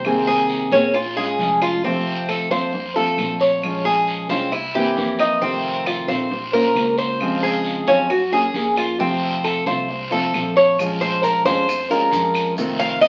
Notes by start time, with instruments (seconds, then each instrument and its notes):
Already playing: upright bass C2, cuban tres C5
0.04 nylon-string guitar C3 D#3 A#3 C4 G#4, long guiro, claves
0.27 cuban tres G#4
0.49 short guiro
0.71 upright bass A#1, nylon-string guitar D#3 A#3 C4 G#4, cuban tres C#4, short guiro
0.94 cuban tres F4, muted nylon-string guitar stroke, long guiro, claves
1.16 nylon-string guitar G#3 C#4 F4, cuban tres G#4
1.39 upright bass F1, nylon-string guitar F3 G#3 C#4 F4, short guiro
1.61 cuban tres F4, short guiro, claves
1.84 nylon-string guitar C3 F3 A3 C4 F4, cuban tres C4, long guiro
2.29 cuban tres A4, short guiro, claves
2.50 upright bass F2, nylon-string guitar F3 A3 C4 F4, cuban tres C5, short guiro
2.73 muted nylon-string guitar stroke, long guiro
2.96 nylon-string guitar F3 A3 C4 F4, cuban tres A4
3.17 upright bass A#1, nylon-string guitar F3 A3 C4 F4, short guiro, claves
3.40 cuban tres C#5, short guiro
3.62 nylon-string guitar F3 G#3 C#4 F4, long guiro, claves
3.85 cuban tres G#4
4.07 short guiro
4.29 upright bass C2, nylon-string guitar G#3 C#4 F4, cuban tres C4, short guiro
4.52 cuban tres E4, muted nylon-string guitar stroke, long guiro, claves
4.75 nylon-string guitar E3 A#3 C4 E4, cuban tres G4
4.96 upright bass F2, nylon-string guitar E3 A#3 C4 E4, short guiro
5.19 cuban tres D#4, short guiro, claves
5.41 nylon-string guitar C3 D#3 A3 C4 F4, cuban tres C4, long guiro
5.86 cuban tres F4, short guiro, claves
6.08 upright bass A#1, nylon-string guitar D#3 A3 C4 F4, cuban tres C5, short guiro
6.31 muted nylon-string guitar stroke, long guiro
6.53 nylon-string guitar A#3 C#4 F4 C5, cuban tres A#4
6.75 upright bass C#2, nylon-string guitar A#3 C#4 F4 C5, short guiro, claves
6.98 cuban tres C5, short guiro
7.20 nylon-string guitar C#3 F3 G#3 C4 F4, long guiro, claves
7.43 cuban tres G#4
7.64 short guiro
7.87 upright bass F#2, nylon-string guitar F3 G#3 C4 F4, cuban tres C#4, short guiro
8.09 cuban tres F#4, muted nylon-string guitar stroke, long guiro, claves
8.32 nylon-string guitar A#3 C#4 G#4, cuban tres G#4
8.54 upright bass F2, nylon-string guitar A#3 C#4 G#4, short guiro
8.76 cuban tres F4, short guiro, claves
8.99 nylon-string guitar C3 F3 A3 C4 F4, cuban tres C4, long guiro
9.44 cuban tres A4, short guiro, claves
9.66 upright bass C2, nylon-string guitar F3 A3 C4 F4, cuban tres C5, short guiro
9.88 muted nylon-string guitar stroke, long guiro
10.11 nylon-string guitar F3 A3 C4 F4, cuban tres A4
10.33 upright bass A#1, nylon-string guitar F3 A3 C4 F4, short guiro, claves
10.56 cuban tres C#5, short guiro
10.78 nylon-string guitar F3 G#3 C#4 F4, long guiro, claves, maracas
11.01 cuban tres C5, maracas
11.22 cuban tres A#4, short guiro, maracas
11.45 upright bass F2, nylon-string guitar G#3 C#4 F4, cuban tres C5, short guiro, maracas
11.67 muted nylon-string guitar stroke, long guiro, claves, maracas
11.90 nylon-string guitar G#3 C#4 F4, cuban tres A#4, maracas
12.11 upright bass F2, nylon-string guitar F3 G#3 C#4 F4, short guiro, maracas
12.34 short guiro, claves, maracas
12.57 nylon-string guitar C3 D#3 A3 C4 F4, long guiro, maracas
12.79 cuban tres F5, maracas
13.01 cuban tres D#5, short guiro, claves, maracas